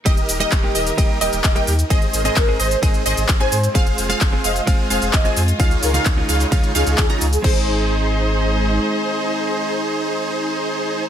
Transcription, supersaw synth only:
X:1
M:4/4
L:1/16
Q:1/4=130
K:Ab
V:1 name="Supersaw synth"
[GBe]3 [GBe]3 [GBe] z [GBe]2 [GBe]3 [GBg] z2 | [Ace]3 [Ace]3 [Ace] z [Ace]2 [Ace]3 [Aca] z2 | [Acf]3 [Acf]3 [Acf] z [Acf]2 [Acf]3 [Aca] z2 | [EFAdf]3 [EFAdf]3 [EFAdf] z [EFAdf]2 [EFAdf]3 [EFAdb] z2 |
[EAc]16- | [EAc]16 |]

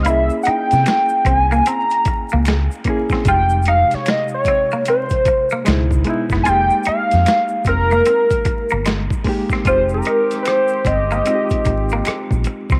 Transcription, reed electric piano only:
X:1
M:4/4
L:1/8
Q:"Swing 16ths" 1/4=75
K:Fm
V:1 name="Reed electric piano"
[B,D=EA]3 z4 [B,DEA] | [C,A,EG]3 z3 [_C,A,E_F] [A,_CEF] | [A,B,EG]3 z4 [A,B,EG] | [A,CEG]3 z [A,CEFG]3 z |]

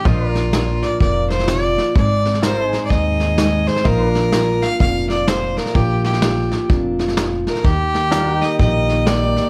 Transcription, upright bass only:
X:1
M:4/4
L:1/8
Q:"Swing" 1/4=126
K:Bbmix
V:1 name="Upright bass" clef=bass
B,,,4 F,,,4 | A,,,4 E,,4 | B,,,4 F,,,4 | B,,,4 F,,,4 |
E,,4 B,,,4 |]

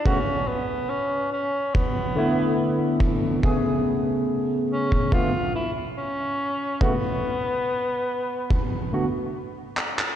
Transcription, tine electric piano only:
X:1
M:4/4
L:1/8
Q:1/4=71
K:Dlyd
V:1 name="Tine electric piano"
[C,A,B,F] z4 [D,A,B,E]3 | [C,A,B,G]4 [D,A,B,=F] z3 | [C,A,B,F] z4 [D,A,B,F] z2 |]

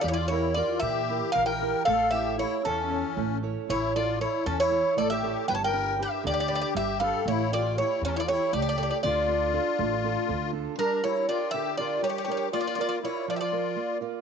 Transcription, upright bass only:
X:1
M:7/8
L:1/8
Q:1/4=118
K:Aphr
V:1 name="Upright bass" clef=bass
E,,3 B,,2 B,,,2 | A,,,3 E,,2 A,,,2 | A,,,3 E,,2 A,,,2 | G,,,3 D,,2 G,,,2 |
A,,,3 E,,2 ^C,,2 | D,,3 A,,,2 D,,2 | z6 z | z6 z |]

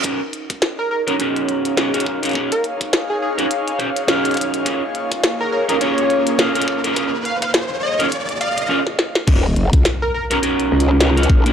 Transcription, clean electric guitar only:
X:1
M:4/4
L:1/16
Q:"Swing 16ths" 1/4=104
K:Ebm
V:1 name="Clean electric guitar"
[DEGB] z6 [DEGB] [DEGB]4 [DEGB] [DEGB]2 [DEGB] | [DEGB] z6 [DEGB] z2 [DEG=c] z [DEGB]4 | [DFAB] z6 [DFAB] [DFAB]4 [DFAB] [DFAB]2 [DFAB] | [DFAB] z6 [DFAB] z4 [DFAB] z3 |
[DEGB] z6 [DEGB] [DEGB]4 [DEGB] [DEGB]2 [DEGB] |]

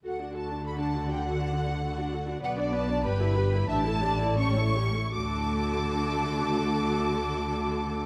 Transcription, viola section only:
X:1
M:2/4
L:1/16
Q:1/4=92
K:D
V:1 name="Viola section"
[FA] [DF] [FA] [DF] [FA] [DF] [FA] [DF] | [FA] [DF] [FA] [DF] [FA] [DF] [FA] [DF] | [B,B] [Dd] [B,B] [Dd] [GB] [EG] [GB] [EG] | [DG] [EA] [DG] [EA] [CG] [EA] [CG] [EA] |
[A,F]8- | [A,F]8 |]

